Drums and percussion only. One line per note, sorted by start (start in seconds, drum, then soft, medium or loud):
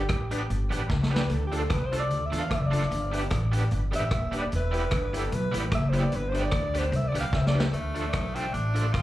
0.09 kick loud
0.09 cross-stick loud
0.09 closed hi-hat medium
0.31 closed hi-hat loud
0.50 closed hi-hat medium
0.72 closed hi-hat loud
0.90 kick loud
0.90 snare medium
1.03 snare medium
1.16 snare loud
1.30 closed hi-hat medium
1.52 closed hi-hat medium
1.70 kick loud
1.70 cross-stick loud
1.70 closed hi-hat medium
1.93 closed hi-hat medium
2.10 closed hi-hat medium
2.33 closed hi-hat loud
2.51 kick loud
2.51 cross-stick loud
2.51 closed hi-hat medium
2.73 closed hi-hat medium
2.82 cross-stick medium
2.91 closed hi-hat medium
3.13 closed hi-hat medium
3.31 kick loud
3.31 cross-stick loud
3.31 closed hi-hat medium
3.53 closed hi-hat medium
3.71 closed hi-hat medium
3.93 closed hi-hat loud
4.11 kick loud
4.11 cross-stick loud
4.11 closed hi-hat medium
4.33 closed hi-hat medium
4.52 closed hi-hat medium
4.74 closed hi-hat medium
4.91 kick loud
4.91 cross-stick loud
4.91 closed hi-hat medium
5.14 closed hi-hat loud
5.32 closed hi-hat medium
5.54 closed hi-hat loud
5.72 kick loud
5.72 cross-stick loud
5.72 closed hi-hat medium
5.93 closed hi-hat medium
6.12 closed hi-hat medium
6.34 closed hi-hat medium
6.51 kick loud
6.51 cross-stick loud
6.51 closed hi-hat medium
6.74 closed hi-hat medium
6.93 closed hi-hat medium
7.15 closed hi-hat loud
7.33 kick medium
7.33 snare medium
7.47 snare medium
7.60 snare loud
7.73 closed hi-hat medium
7.95 closed hi-hat medium
8.13 kick loud
8.13 cross-stick loud
8.13 closed hi-hat medium
8.35 closed hi-hat medium
8.54 closed hi-hat medium
8.76 closed hi-hat loud
8.94 kick loud
8.94 cross-stick loud
8.94 closed hi-hat medium